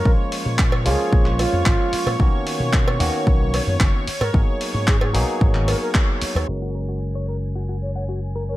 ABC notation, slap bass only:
X:1
M:4/4
L:1/16
Q:1/4=112
K:F#
V:1 name="Slap bass" clef=bass
A,,, z2 A,,3 C,, z A,,,2 z E,, G,,, z2 A,, | B,,, z2 B,,3 D,, z B,,,2 z F,, F,,, z2 G,, | G,,, z2 G,,3 B,,, z G,,,2 z4 z D,, | F,,,16 |]